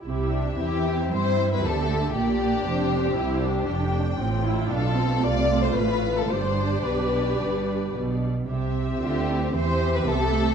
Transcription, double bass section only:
\new Staff \with { instrumentName = "Double bass section" } { \clef bass \time 4/4 \key c \major \tempo 4 = 115 c,4 e,4 g,4 d,4 | bes,,4 f,,4 c,4 f,,4 | a,,4 b,,4 c,4 a,,4 | g,,4 b,,4 g,,4 b,,4 |
c,4 d,4 e,4 c,4 | }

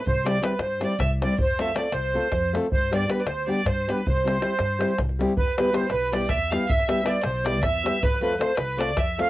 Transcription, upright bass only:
\new Staff \with { instrumentName = "Upright bass" } { \clef bass \time 7/8 \key e \phrygian \tempo 4 = 158 c,4. g,4 c,4 | f,4. c,4 f,4 | g,4. d,4 g,4 | c,4. g,4 c,4 |
e,4. b,,4 e,4 | e,4. b,,4 e,4 | f,4. c,4 f,4 | }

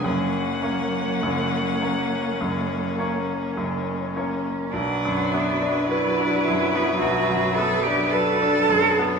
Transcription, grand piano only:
\new Staff \with { instrumentName = "Grand piano" } { \time 4/4 \key b \minor \tempo 4 = 52 <fis,, fis,>8 <ais cis' cis''>8 <fis,, fis,>8 <ais cis' cis''>8 <fis,, fis,>8 <ais cis' cis''>8 <fis,, fis,>8 <ais cis' cis''>8 | b,,16 fis,16 b16 d'16 b'16 d'16 fis,16 b16 b,,16 fis,16 b16 d'16 b'16 d'16 fis,16 b16 | }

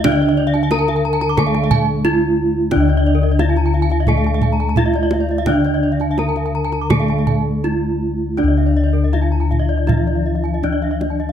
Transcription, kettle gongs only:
<<
  \new Staff \with { instrumentName = "Kettle gongs" } { \time 4/4 \tempo 4 = 85 << { r4 ees'8 r4. ees'8 r8 | r2. ees'8 r8 | r4 ees'8 r4. ees'8 r8 | r4 ees'8 r4. ees'8 r8 | } \\ { d'2. r4 | d'2. r4 | d'2. r4 | d'2. r4 | } >> }
  \new Staff \with { instrumentName = "Kettle gongs" } { \clef bass \time 4/4 << { r2 d2~ | d4 r2. | r2 d2~ | d4 r2. | } \\ { d,2 r2 | d,1~ | d,2 r2 | d,1 | } >> }
>>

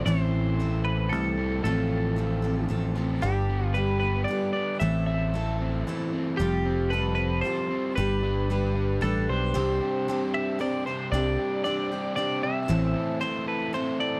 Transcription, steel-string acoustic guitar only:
\new Staff \with { instrumentName = "Steel-string acoustic guitar" } { \time 3/4 \key c \major \tempo 4 = 114 <a, e a c' e' a'>4 <a c' e' a'>4 <a c' e' a'>4 | <a, f a c' f' a'>4 <a c' f' a'>8 <a c' f' a'>8 <a c' f' a'>8 <a c' f' a'>8 | <g d' g' b'>4 <g d' g' b'>4 <g d' g' b'>4 | <a, e a c' e' a'>4 <a c' e' a'>4 <a c' e' a'>4 |
<f g c' f' a'>4 <g c' f' a'>4 <g c' f' a'>4 | <g d' g' b'>4 <g d' g' b'>4 <g d' g' b'>4 | <c' d' g' c''>4 <c' d' g' c''>4 <c' d' g' c''>8 <d' g' c''>8 | <c' d' g' c''>4 <c' d' g' c''>8 <d' g' c''>8 <c' d' g' c''>4 |
<a, e a c' e' c''>4 <a c' e' c''>4 <a c' e' c''>4 | }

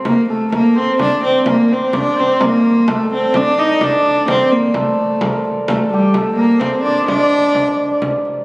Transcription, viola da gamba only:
\new Staff \with { instrumentName = "Viola da gamba" } { \time 3/4 \key c \dorian \tempo 4 = 128 bes8 a8 bes8 c'8 d'8 c'8 | bes8 c'8 d'8 c'8 bes4 | a8 c'8 d'8 ees'8 d'4 | c'8 bes8 a4. r8 |
a8 g8 a8 bes8 c'8 d'8 | d'2 r4 | }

